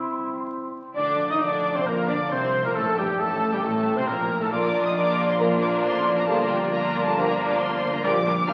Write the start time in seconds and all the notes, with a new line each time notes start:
Already playing: C3 G3 C4 E4 G4 C6
0.13 G3
0.30 E4
0.47 G4
0.64 E4
0.82 C4
0.96 D2 A#2 D3 D4 D5 D6
1.09 F3
1.20 D4
1.30 D#3 D#4 F4 D#5 D#6
1.41 D2 D3 D4 A#4 D5 D6
1.65 F5
1.74 C3 C4 C5 A#5 C6
1.86 A#1 A#2 A#3 A#4 A#5
1.99 A#5
2.08 D2 D3 D4 D5 D6
2.20 D5
2.30 C2 C3 C4 F4 C5 C6
2.43 D4
2.54 F3
2.64 A#2 A#3 D4 A#4 A#5
2.74 A1 A2 A#2 A3 A4 A5
2.87 A#3
2.96 G1 G2 G3 D#4 G4 G5
3.09 G4
3.19 A1 A2 A3 A4 A#4 A5
3.31 D#5
3.42 G5
3.52 G2 G3 G4 G5 A#5
3.63 A1 A2 A3 A4 G5 A5
3.75 A#5
3.86 G5
3.96 C3 C4 C5 D#5 C6
4.07 A#1 A#2 A#3 G4 A#4 A#5
4.19 D#4
4.40 A2 A3 D#4 A4 A5
4.51 A#1 A#2 F3 A#3 D4 F4 A#4 D5 D6
4.63 F3
4.75 D4
4.86 F4 D#5 D#6
4.96 A#3 D4 F4 A#4 D5 D6
5.08 D5
5.19 F5
5.29 C5 A#5 C6
5.39 A#2 F3 A#3 D4 F4 A#4 A#5
5.52 A#5
5.61 D5 F5 D6
5.74 D5
5.84 A1 A2 F4 C5 C6
5.96 D4
6.07 F3
6.17 D4 A#4 A#5
6.27 G1 G2 D3 F3 A#3 D4 F4 G4 A4 A#4 A5
6.39 D3
6.49 D4 G4 G5
6.62 F4
6.71 A#3 D4 F4 A#4 A#5
6.95 F5
7.05 A4 A5 A#5
7.16 D3 F3 A#3 D4 F4 G4 A#4 F5 A#5
7.27 A#5
7.38 F5
7.49 D5 D6
7.59 F4 C5 C6
7.72 D4
7.83 D3
7.92 D4 A#4 A#5
8.03 A#1 A#2 F3 G3 A#3 D4 F4 G4 A#4 D5 D6
8.15 F3
8.24 G3 D4 F4 A#4
8.38 F4
8.47 A#1 A#2 G3 D4 F4 G4 A#4 F5 F6